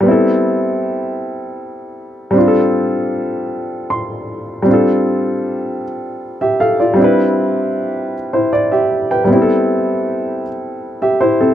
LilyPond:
\new Staff \with { instrumentName = "Grand piano" } { \time 6/8 \key a \minor \tempo 4. = 52 << { r2. | r2 c'''4 | r2 r16 <g' e''>16 <a' f''>16 <f' d''>16~ | <f' d''>16 r4. <e' c''>16 d''16 <g' e''>8 <b' g''>16~ |
<b' g''>16 r2 <g' e''>16 <e' c''>16 <c' a'>16 | } \\ { <g b c' e' a'>2. | <g c' d' f' g' a'>2. | <g c' d' f' a'>2. | <g c' d' e' b'>2. |
<g b c' e' g' a'>2. | } >> }